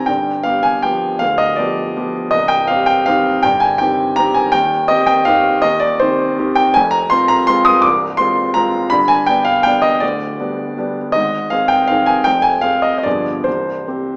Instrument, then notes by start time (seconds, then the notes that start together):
grand piano
Already playing: G1 G2 D#3 C4 G4 G5 G#5 A#5
0.06 G1 G2 G5
0.43 B3 G4 F5
0.63 G#5
0.83 F3 B3 G4 G5
1.19 D1 D2 F5
1.38 D#5
1.56 F3 B3 G4 D5
1.97 F3 B3 G4
2.31 C1 C2 D#5
2.48 G5
2.67 C4 G4 F5
2.86 G5
3.06 D#3 C4 G4 F5
3.43 G1 G2 G5
3.60 G#5
3.78 D#3 C4 G4 G5
4.16 D#3 C4 G4 A#5
4.34 G#5
4.52 D#1 D#2 G5
4.88 C4 G4 D#5
5.06 G5
5.25 D#3 C4 G4 F5
5.62 D#1 D#2 D#5
5.80 D5
6.00 D#3 C4 G4 C5
6.39 D#3 C4 G4
6.55 G5
6.74 F1 F2 G#5
6.91 A#5
7.10 C4 F4 C6
7.28 A#5
7.47 G#3 C4 F4 C6
7.65 D#6
7.82 C1 C2 D6
8.17 G#3 C4 F4 C6
8.54 G#3 C4 F4 A#5
8.90 G1 G2 B5
9.08 G#5
9.26 B3 D4 G5
9.45 F5
9.63 G3 B3 D4 G5
9.82 D#5
10.00 D1 D2 D5
10.39 G3 B3 D4
10.78 G3 B3 D4
11.12 G#1 G#2 D#5
11.50 C4 G#4 F5
11.68 G5
11.87 D#3 C4 G#4 F5
12.06 G#5
12.24 F1 F2 G5
12.42 G#5
12.61 C4 G#4 F5
12.82 D#5
12.98 D#5
13.03 G1 G2 F3 B3 G#4 D5
13.44 C1 C2 C5
13.88 C4 G4